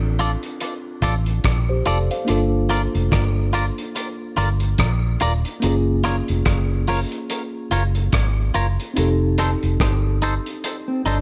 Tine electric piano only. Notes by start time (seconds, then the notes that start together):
Already playing: C4 D4 F4 A4
1.69 G4 C5
1.86 D5
2.11 C5 F5
2.25 A#3 D4 F4
2.31 A4
5.60 A#3 C#4
5.64 F4 G#4
8.94 C4 D#4 G4
8.99 A4